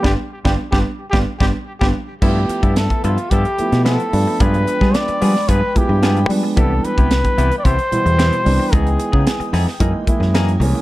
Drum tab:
CC |----------------|x---------------|----------------|----------------|
HH |----------------|--xxxxxxxxxxxxo-|xxx-xxo-x-x-xxo-|x-xxxxxxxxxxxxo-|
SD |o--o-o--o-o--o--|----o------oo---|---oo--o----o---|----o-------o---|
BD |o--o-o--o-o--o--|o--o-o--o-------|o--o----o-o-----|o--o-o--o-------|

CC |----------------|
HH |xxx-xxo-x-x-xxo-|
SD |----o-oo---oo---|
BD |o--o----o-o-----|